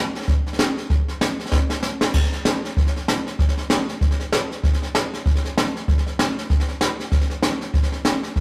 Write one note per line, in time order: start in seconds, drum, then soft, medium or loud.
0.15 snare soft
0.21 snare soft
0.28 kick loud
0.28 snare soft
0.47 snare soft
0.53 snare soft
0.59 snare loud
0.59 hi-hat pedal medium
0.77 snare soft
0.90 kick loud
0.90 snare soft
1.08 snare soft
1.21 snare loud
1.21 hi-hat pedal medium
1.39 snare soft
1.46 snare soft
1.52 kick loud
1.52 snare medium
1.70 snare medium
1.83 snare medium
1.83 hi-hat pedal medium
2.01 snare medium
2.14 kick loud
2.14 snare soft
2.14 crash medium
2.23 snare soft
2.32 snare soft
2.45 snare loud
2.45 hi-hat pedal medium
2.65 snare soft
2.77 kick loud
2.77 snare soft
2.87 snare soft
2.96 snare soft
3.08 snare loud
3.08 hi-hat pedal medium
3.27 snare soft
3.39 kick loud
3.39 snare soft
3.48 snare soft
3.57 snare soft
3.70 snare loud
3.70 hi-hat pedal medium
3.88 snare soft
4.01 kick loud
4.01 snare soft
4.11 snare soft
4.20 snare soft
4.32 snare loud
4.32 hi-hat pedal medium
4.51 snare soft
4.64 kick loud
4.64 snare soft
4.73 snare soft
4.82 snare soft
4.95 snare loud
4.95 hi-hat pedal medium
5.14 snare soft
5.26 kick loud
5.26 snare soft
5.35 snare soft
5.45 snare soft
5.58 snare loud
5.58 hi-hat pedal medium
5.76 snare soft
5.88 kick loud
5.88 snare soft
5.98 snare soft
6.07 snare soft
6.19 snare loud
6.19 hi-hat pedal medium
6.38 snare soft
6.50 kick loud
6.50 snare soft
6.60 snare soft
6.68 snare soft
6.81 snare loud
6.81 hi-hat pedal medium
7.00 snare soft
7.12 kick loud
7.12 snare soft
7.21 snare soft
7.30 snare soft
7.42 snare loud
7.42 hi-hat pedal medium
7.61 snare soft
7.74 kick loud
7.74 snare soft
7.83 snare soft
7.92 snare soft
8.05 snare loud
8.05 hi-hat pedal medium
8.23 snare soft
8.36 kick loud
8.36 snare soft